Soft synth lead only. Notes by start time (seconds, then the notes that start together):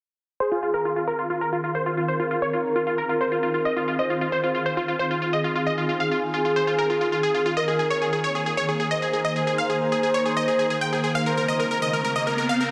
0.40 G#4
1.75 A#4
3.99 C5
5.33 G#4
7.57 A#4
8.91 C5
11.15 C5
12.49 F5